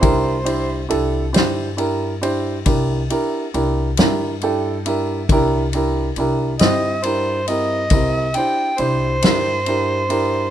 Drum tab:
RD |xxxxxxxxxxxx|xxxxxxxxxxxx|
SD |---o-----o--|---o-----o--|
BD |o-----o-----|o-----o-----|